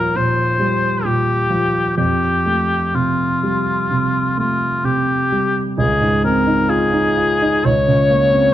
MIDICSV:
0, 0, Header, 1, 3, 480
1, 0, Start_track
1, 0, Key_signature, -1, "major"
1, 0, Tempo, 879765
1, 568, Tempo, 952381
1, 1039, Time_signature, 4, 2, 24, 8
1, 2488, Tempo, 934579
1, 3928, Tempo, 882353
1, 4409, End_track
2, 0, Start_track
2, 0, Title_t, "Cor anglais"
2, 0, Program_c, 0, 69
2, 0, Note_on_c, 0, 70, 61
2, 88, Note_on_c, 0, 72, 59
2, 96, Note_off_c, 0, 70, 0
2, 570, Note_on_c, 0, 67, 51
2, 578, Note_off_c, 0, 72, 0
2, 1036, Note_off_c, 0, 67, 0
2, 1039, Note_on_c, 0, 67, 53
2, 1532, Note_on_c, 0, 65, 41
2, 1539, Note_off_c, 0, 67, 0
2, 2252, Note_off_c, 0, 65, 0
2, 2255, Note_on_c, 0, 65, 46
2, 2489, Note_on_c, 0, 67, 49
2, 2497, Note_off_c, 0, 65, 0
2, 2880, Note_off_c, 0, 67, 0
2, 2967, Note_on_c, 0, 68, 61
2, 3197, Note_off_c, 0, 68, 0
2, 3204, Note_on_c, 0, 70, 57
2, 3435, Note_on_c, 0, 68, 65
2, 3443, Note_off_c, 0, 70, 0
2, 3927, Note_on_c, 0, 73, 72
2, 3935, Note_off_c, 0, 68, 0
2, 4409, Note_off_c, 0, 73, 0
2, 4409, End_track
3, 0, Start_track
3, 0, Title_t, "Grand piano"
3, 0, Program_c, 1, 0
3, 0, Control_c, 1, 64, 127
3, 0, Note_on_c, 1, 39, 42
3, 0, Note_on_c, 1, 46, 30
3, 0, Note_on_c, 1, 53, 31
3, 0, Note_on_c, 1, 55, 33
3, 64, Note_off_c, 1, 39, 0
3, 85, Note_off_c, 1, 46, 0
3, 85, Note_on_c, 1, 46, 29
3, 228, Note_off_c, 1, 53, 0
3, 324, Note_off_c, 1, 55, 0
3, 324, Note_on_c, 1, 55, 30
3, 469, Note_off_c, 1, 46, 0
3, 572, Note_on_c, 1, 46, 29
3, 706, Note_off_c, 1, 55, 0
3, 799, Note_on_c, 1, 53, 30
3, 944, Note_off_c, 1, 46, 0
3, 1039, Note_off_c, 1, 53, 0
3, 1040, Note_on_c, 1, 41, 36
3, 1048, Control_c, 1, 64, 0
3, 1151, Control_c, 1, 64, 127
3, 1283, Note_on_c, 1, 57, 28
3, 1527, Note_on_c, 1, 48, 27
3, 1675, Note_off_c, 1, 57, 0
3, 1773, Note_on_c, 1, 55, 27
3, 1917, Note_off_c, 1, 48, 0
3, 1994, Note_off_c, 1, 41, 0
3, 2013, Note_on_c, 1, 48, 26
3, 2157, Note_off_c, 1, 55, 0
3, 2249, Note_on_c, 1, 57, 27
3, 2394, Note_off_c, 1, 48, 0
3, 2484, Note_on_c, 1, 48, 28
3, 2632, Note_off_c, 1, 57, 0
3, 2730, Note_on_c, 1, 55, 28
3, 2873, Note_off_c, 1, 48, 0
3, 2965, Note_on_c, 1, 37, 43
3, 2969, Note_off_c, 1, 55, 0
3, 2980, Control_c, 1, 64, 0
3, 3077, Control_c, 1, 64, 127
3, 3084, Note_on_c, 1, 44, 33
3, 3203, Note_on_c, 1, 60, 35
3, 3272, Note_off_c, 1, 44, 0
3, 3318, Note_on_c, 1, 63, 36
3, 3391, Note_off_c, 1, 60, 0
3, 3431, Note_on_c, 1, 65, 37
3, 3508, Note_off_c, 1, 63, 0
3, 3556, Note_on_c, 1, 63, 37
3, 3629, Note_off_c, 1, 65, 0
3, 3679, Note_on_c, 1, 65, 38
3, 3757, Note_off_c, 1, 63, 0
3, 3806, Note_on_c, 1, 63, 38
3, 3879, Note_off_c, 1, 65, 0
3, 3906, Note_off_c, 1, 37, 0
3, 3927, Note_on_c, 1, 37, 44
3, 3928, Note_off_c, 1, 63, 0
3, 3939, Control_c, 1, 64, 0
3, 4047, Control_c, 1, 64, 127
3, 4050, Note_on_c, 1, 49, 35
3, 4171, Note_on_c, 1, 58, 35
3, 4243, Note_off_c, 1, 49, 0
3, 4288, Note_on_c, 1, 60, 36
3, 4361, Note_off_c, 1, 58, 0
3, 4409, Note_off_c, 1, 37, 0
3, 4409, Note_off_c, 1, 60, 0
3, 4409, End_track
0, 0, End_of_file